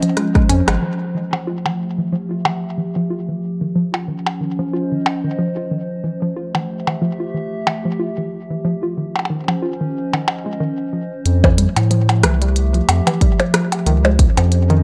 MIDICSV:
0, 0, Header, 1, 6, 480
1, 0, Start_track
1, 0, Tempo, 652174
1, 604, Time_signature, 4, 2, 24, 8
1, 10916, End_track
2, 0, Start_track
2, 0, Title_t, "Ambient pad"
2, 0, Program_c, 0, 92
2, 0, Note_on_c, 0, 53, 80
2, 0, Note_on_c, 0, 61, 79
2, 0, Note_on_c, 0, 72, 76
2, 0, Note_on_c, 0, 75, 75
2, 604, Note_off_c, 0, 61, 0
2, 605, Note_off_c, 0, 75, 0
2, 838, Note_on_c, 0, 57, 72
2, 1206, Note_off_c, 0, 72, 0
2, 1263, Note_on_c, 0, 67, 72
2, 1478, Note_on_c, 0, 76, 73
2, 2523, Note_off_c, 0, 76, 0
2, 2524, Note_off_c, 0, 57, 0
2, 2808, Note_on_c, 0, 61, 72
2, 3184, Note_on_c, 0, 72, 83
2, 3298, Note_off_c, 0, 67, 0
2, 3401, Note_on_c, 0, 75, 81
2, 4444, Note_off_c, 0, 61, 0
2, 4445, Note_off_c, 0, 75, 0
2, 4642, Note_on_c, 0, 57, 81
2, 4847, Note_on_c, 0, 76, 89
2, 4860, Note_on_c, 0, 67, 75
2, 5218, Note_off_c, 0, 72, 0
2, 6364, Note_off_c, 0, 57, 0
2, 6365, Note_off_c, 0, 76, 0
2, 6644, Note_on_c, 0, 61, 83
2, 6703, Note_on_c, 0, 72, 79
2, 7138, Note_off_c, 0, 67, 0
2, 7240, Note_on_c, 0, 75, 65
2, 8276, Note_off_c, 0, 53, 0
2, 8284, Note_off_c, 0, 75, 0
2, 8284, Note_on_c, 0, 53, 75
2, 8285, Note_off_c, 0, 61, 0
2, 8322, Note_on_c, 0, 57, 83
2, 8864, Note_on_c, 0, 67, 88
2, 9058, Note_off_c, 0, 72, 0
2, 9069, Note_on_c, 0, 76, 83
2, 10204, Note_off_c, 0, 57, 0
2, 10204, Note_off_c, 0, 76, 0
2, 10318, Note_on_c, 0, 61, 78
2, 10425, Note_on_c, 0, 72, 94
2, 10565, Note_on_c, 0, 75, 79
2, 10916, Note_off_c, 0, 53, 0
2, 10916, Note_off_c, 0, 61, 0
2, 10916, Note_off_c, 0, 67, 0
2, 10916, Note_off_c, 0, 72, 0
2, 10916, Note_off_c, 0, 75, 0
2, 10916, End_track
3, 0, Start_track
3, 0, Title_t, "Synth arpeggio sound"
3, 0, Program_c, 1, 84
3, 18, Note_on_c, 1, 53, 77
3, 106, Note_off_c, 1, 53, 0
3, 124, Note_on_c, 1, 56, 79
3, 250, Note_off_c, 1, 56, 0
3, 258, Note_on_c, 1, 56, 78
3, 346, Note_off_c, 1, 56, 0
3, 364, Note_on_c, 1, 61, 100
3, 476, Note_off_c, 1, 61, 0
3, 498, Note_on_c, 1, 56, 78
3, 551, Note_off_c, 1, 56, 0
3, 603, Note_on_c, 1, 52, 81
3, 731, Note_off_c, 1, 52, 0
3, 843, Note_on_c, 1, 52, 73
3, 955, Note_off_c, 1, 52, 0
3, 978, Note_on_c, 1, 53, 100
3, 1031, Note_off_c, 1, 53, 0
3, 1084, Note_on_c, 1, 65, 82
3, 1151, Note_off_c, 1, 65, 0
3, 1219, Note_on_c, 1, 52, 74
3, 1319, Note_off_c, 1, 52, 0
3, 1459, Note_on_c, 1, 52, 74
3, 1546, Note_off_c, 1, 52, 0
3, 1564, Note_on_c, 1, 53, 98
3, 1631, Note_off_c, 1, 53, 0
3, 1699, Note_on_c, 1, 65, 72
3, 1751, Note_off_c, 1, 65, 0
3, 1804, Note_on_c, 1, 52, 75
3, 1932, Note_off_c, 1, 52, 0
3, 2044, Note_on_c, 1, 52, 75
3, 2156, Note_off_c, 1, 52, 0
3, 2178, Note_on_c, 1, 53, 98
3, 2231, Note_off_c, 1, 53, 0
3, 2284, Note_on_c, 1, 65, 73
3, 2351, Note_off_c, 1, 65, 0
3, 2418, Note_on_c, 1, 52, 73
3, 2519, Note_off_c, 1, 52, 0
3, 2658, Note_on_c, 1, 51, 73
3, 2746, Note_off_c, 1, 51, 0
3, 2764, Note_on_c, 1, 53, 95
3, 2831, Note_off_c, 1, 53, 0
3, 2898, Note_on_c, 1, 65, 74
3, 2951, Note_off_c, 1, 65, 0
3, 3004, Note_on_c, 1, 51, 83
3, 3132, Note_off_c, 1, 51, 0
3, 3244, Note_on_c, 1, 51, 72
3, 3356, Note_off_c, 1, 51, 0
3, 3379, Note_on_c, 1, 53, 99
3, 3431, Note_off_c, 1, 53, 0
3, 3485, Note_on_c, 1, 65, 79
3, 3551, Note_off_c, 1, 65, 0
3, 3619, Note_on_c, 1, 51, 75
3, 3719, Note_off_c, 1, 51, 0
3, 3859, Note_on_c, 1, 51, 75
3, 3946, Note_off_c, 1, 51, 0
3, 3964, Note_on_c, 1, 53, 96
3, 4031, Note_off_c, 1, 53, 0
3, 4098, Note_on_c, 1, 65, 73
3, 4151, Note_off_c, 1, 65, 0
3, 4204, Note_on_c, 1, 51, 75
3, 4332, Note_off_c, 1, 51, 0
3, 4444, Note_on_c, 1, 52, 83
3, 4556, Note_off_c, 1, 52, 0
3, 4579, Note_on_c, 1, 53, 98
3, 4631, Note_off_c, 1, 53, 0
3, 4685, Note_on_c, 1, 65, 75
3, 4751, Note_off_c, 1, 65, 0
3, 4819, Note_on_c, 1, 52, 75
3, 4919, Note_off_c, 1, 52, 0
3, 5059, Note_on_c, 1, 52, 76
3, 5146, Note_off_c, 1, 52, 0
3, 5165, Note_on_c, 1, 53, 99
3, 5231, Note_off_c, 1, 53, 0
3, 5299, Note_on_c, 1, 65, 75
3, 5352, Note_off_c, 1, 65, 0
3, 5405, Note_on_c, 1, 52, 79
3, 5532, Note_off_c, 1, 52, 0
3, 5644, Note_on_c, 1, 52, 74
3, 5756, Note_off_c, 1, 52, 0
3, 5779, Note_on_c, 1, 53, 98
3, 5831, Note_off_c, 1, 53, 0
3, 5885, Note_on_c, 1, 65, 77
3, 5951, Note_off_c, 1, 65, 0
3, 6019, Note_on_c, 1, 52, 76
3, 6119, Note_off_c, 1, 52, 0
3, 6259, Note_on_c, 1, 52, 75
3, 6347, Note_off_c, 1, 52, 0
3, 6364, Note_on_c, 1, 53, 99
3, 6431, Note_off_c, 1, 53, 0
3, 6499, Note_on_c, 1, 65, 73
3, 6551, Note_off_c, 1, 65, 0
3, 6604, Note_on_c, 1, 51, 73
3, 6732, Note_off_c, 1, 51, 0
3, 6844, Note_on_c, 1, 51, 84
3, 6956, Note_off_c, 1, 51, 0
3, 6978, Note_on_c, 1, 53, 101
3, 7031, Note_off_c, 1, 53, 0
3, 7084, Note_on_c, 1, 65, 75
3, 7151, Note_off_c, 1, 65, 0
3, 7219, Note_on_c, 1, 51, 76
3, 7319, Note_off_c, 1, 51, 0
3, 7459, Note_on_c, 1, 51, 72
3, 7546, Note_off_c, 1, 51, 0
3, 7698, Note_on_c, 1, 56, 76
3, 7786, Note_off_c, 1, 56, 0
3, 7804, Note_on_c, 1, 51, 97
3, 7871, Note_off_c, 1, 51, 0
3, 8044, Note_on_c, 1, 53, 75
3, 8156, Note_off_c, 1, 53, 0
3, 8418, Note_on_c, 1, 52, 101
3, 8506, Note_off_c, 1, 52, 0
3, 8524, Note_on_c, 1, 55, 77
3, 8591, Note_off_c, 1, 55, 0
3, 8764, Note_on_c, 1, 53, 87
3, 8876, Note_off_c, 1, 53, 0
3, 9004, Note_on_c, 1, 52, 101
3, 9116, Note_off_c, 1, 52, 0
3, 9139, Note_on_c, 1, 55, 77
3, 9191, Note_off_c, 1, 55, 0
3, 9379, Note_on_c, 1, 53, 75
3, 9466, Note_off_c, 1, 53, 0
3, 9619, Note_on_c, 1, 52, 106
3, 9706, Note_off_c, 1, 52, 0
3, 9724, Note_on_c, 1, 55, 81
3, 9791, Note_off_c, 1, 55, 0
3, 9964, Note_on_c, 1, 53, 78
3, 10076, Note_off_c, 1, 53, 0
3, 10205, Note_on_c, 1, 51, 101
3, 10316, Note_off_c, 1, 51, 0
3, 10339, Note_on_c, 1, 56, 77
3, 10392, Note_off_c, 1, 56, 0
3, 10579, Note_on_c, 1, 53, 77
3, 10667, Note_off_c, 1, 53, 0
3, 10819, Note_on_c, 1, 51, 104
3, 10907, Note_off_c, 1, 51, 0
3, 10916, End_track
4, 0, Start_track
4, 0, Title_t, "Analog synth bass"
4, 0, Program_c, 2, 38
4, 364, Note_on_c, 2, 41, 99
4, 456, Note_off_c, 2, 41, 0
4, 498, Note_on_c, 2, 32, 88
4, 571, Note_off_c, 2, 32, 0
4, 8284, Note_on_c, 2, 41, 103
4, 8591, Note_off_c, 2, 41, 0
4, 8658, Note_on_c, 2, 45, 92
4, 9004, Note_on_c, 2, 36, 85
4, 9015, Note_off_c, 2, 45, 0
4, 9431, Note_off_c, 2, 36, 0
4, 9484, Note_on_c, 2, 41, 88
4, 9576, Note_off_c, 2, 41, 0
4, 10204, Note_on_c, 2, 37, 97
4, 10511, Note_off_c, 2, 37, 0
4, 10578, Note_on_c, 2, 41, 94
4, 10916, Note_off_c, 2, 41, 0
4, 10916, End_track
5, 0, Start_track
5, 0, Title_t, "Percussion blips"
5, 499, Note_on_c, 9, 60, 55
5, 572, Note_off_c, 9, 60, 0
5, 979, Note_on_c, 9, 60, 51
5, 1052, Note_off_c, 9, 60, 0
5, 1219, Note_on_c, 9, 60, 52
5, 1292, Note_off_c, 9, 60, 0
5, 1804, Note_on_c, 9, 60, 79
5, 1878, Note_off_c, 9, 60, 0
5, 2899, Note_on_c, 9, 60, 49
5, 2973, Note_off_c, 9, 60, 0
5, 3139, Note_on_c, 9, 60, 51
5, 3212, Note_off_c, 9, 60, 0
5, 3724, Note_on_c, 9, 60, 77
5, 3798, Note_off_c, 9, 60, 0
5, 4819, Note_on_c, 9, 60, 47
5, 4892, Note_off_c, 9, 60, 0
5, 5058, Note_on_c, 9, 60, 50
5, 5132, Note_off_c, 9, 60, 0
5, 5644, Note_on_c, 9, 60, 76
5, 5718, Note_off_c, 9, 60, 0
5, 6739, Note_on_c, 9, 60, 46
5, 6764, Note_off_c, 9, 60, 0
5, 6764, Note_on_c, 9, 60, 37
5, 6810, Note_off_c, 9, 60, 0
5, 6810, Note_on_c, 9, 60, 30
5, 6883, Note_off_c, 9, 60, 0
5, 6979, Note_on_c, 9, 60, 47
5, 7053, Note_off_c, 9, 60, 0
5, 7459, Note_on_c, 9, 60, 57
5, 7533, Note_off_c, 9, 60, 0
5, 7564, Note_on_c, 9, 60, 74
5, 7638, Note_off_c, 9, 60, 0
5, 8419, Note_on_c, 9, 56, 93
5, 8493, Note_off_c, 9, 56, 0
5, 8659, Note_on_c, 9, 60, 55
5, 8732, Note_off_c, 9, 60, 0
5, 8899, Note_on_c, 9, 60, 56
5, 8972, Note_off_c, 9, 60, 0
5, 9485, Note_on_c, 9, 60, 84
5, 9558, Note_off_c, 9, 60, 0
5, 9619, Note_on_c, 9, 60, 66
5, 9693, Note_off_c, 9, 60, 0
5, 9860, Note_on_c, 9, 56, 87
5, 9933, Note_off_c, 9, 56, 0
5, 10099, Note_on_c, 9, 60, 40
5, 10173, Note_off_c, 9, 60, 0
5, 10339, Note_on_c, 9, 56, 87
5, 10413, Note_off_c, 9, 56, 0
5, 10579, Note_on_c, 9, 60, 53
5, 10653, Note_off_c, 9, 60, 0
5, 10916, End_track
6, 0, Start_track
6, 0, Title_t, "Drums"
6, 19, Note_on_c, 9, 42, 55
6, 92, Note_off_c, 9, 42, 0
6, 124, Note_on_c, 9, 37, 63
6, 124, Note_on_c, 9, 42, 55
6, 198, Note_off_c, 9, 37, 0
6, 198, Note_off_c, 9, 42, 0
6, 258, Note_on_c, 9, 36, 117
6, 259, Note_on_c, 9, 37, 65
6, 259, Note_on_c, 9, 42, 27
6, 332, Note_off_c, 9, 36, 0
6, 332, Note_off_c, 9, 37, 0
6, 332, Note_off_c, 9, 42, 0
6, 364, Note_on_c, 9, 42, 92
6, 438, Note_off_c, 9, 42, 0
6, 499, Note_on_c, 9, 37, 84
6, 499, Note_on_c, 9, 42, 54
6, 572, Note_off_c, 9, 37, 0
6, 572, Note_off_c, 9, 42, 0
6, 8284, Note_on_c, 9, 42, 56
6, 8358, Note_off_c, 9, 42, 0
6, 8419, Note_on_c, 9, 36, 102
6, 8419, Note_on_c, 9, 42, 27
6, 8492, Note_off_c, 9, 36, 0
6, 8493, Note_off_c, 9, 42, 0
6, 8524, Note_on_c, 9, 42, 95
6, 8598, Note_off_c, 9, 42, 0
6, 8659, Note_on_c, 9, 42, 56
6, 8732, Note_off_c, 9, 42, 0
6, 8765, Note_on_c, 9, 42, 56
6, 8838, Note_off_c, 9, 42, 0
6, 8899, Note_on_c, 9, 42, 28
6, 8972, Note_off_c, 9, 42, 0
6, 9004, Note_on_c, 9, 37, 123
6, 9004, Note_on_c, 9, 42, 96
6, 9078, Note_off_c, 9, 37, 0
6, 9078, Note_off_c, 9, 42, 0
6, 9138, Note_on_c, 9, 42, 54
6, 9212, Note_off_c, 9, 42, 0
6, 9245, Note_on_c, 9, 42, 57
6, 9318, Note_off_c, 9, 42, 0
6, 9379, Note_on_c, 9, 42, 28
6, 9453, Note_off_c, 9, 42, 0
6, 9485, Note_on_c, 9, 42, 99
6, 9558, Note_off_c, 9, 42, 0
6, 9619, Note_on_c, 9, 42, 55
6, 9693, Note_off_c, 9, 42, 0
6, 9724, Note_on_c, 9, 36, 108
6, 9725, Note_on_c, 9, 42, 56
6, 9798, Note_off_c, 9, 36, 0
6, 9798, Note_off_c, 9, 42, 0
6, 9860, Note_on_c, 9, 42, 29
6, 9933, Note_off_c, 9, 42, 0
6, 9965, Note_on_c, 9, 37, 119
6, 9965, Note_on_c, 9, 42, 96
6, 10038, Note_off_c, 9, 37, 0
6, 10038, Note_off_c, 9, 42, 0
6, 10099, Note_on_c, 9, 42, 58
6, 10173, Note_off_c, 9, 42, 0
6, 10205, Note_on_c, 9, 42, 57
6, 10278, Note_off_c, 9, 42, 0
6, 10339, Note_on_c, 9, 42, 28
6, 10413, Note_off_c, 9, 42, 0
6, 10444, Note_on_c, 9, 36, 124
6, 10445, Note_on_c, 9, 42, 98
6, 10518, Note_off_c, 9, 36, 0
6, 10518, Note_off_c, 9, 42, 0
6, 10579, Note_on_c, 9, 42, 55
6, 10653, Note_off_c, 9, 42, 0
6, 10685, Note_on_c, 9, 42, 54
6, 10759, Note_off_c, 9, 42, 0
6, 10820, Note_on_c, 9, 42, 28
6, 10893, Note_off_c, 9, 42, 0
6, 10916, End_track
0, 0, End_of_file